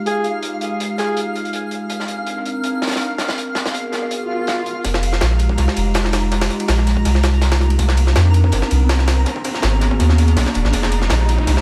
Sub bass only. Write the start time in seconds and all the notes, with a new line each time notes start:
4.85 F1
5.21 A#1
5.58 C2
5.77 F1
6.68 A#1
7.05 C2
7.79 C2
8.16 F2
8.53 G1
8.71 C2
9.63 G#1
10.00 D#2
10.37 B1
10.55 D#1
10.65 G#1
10.73 F1
11.10 A#1
11.47 C2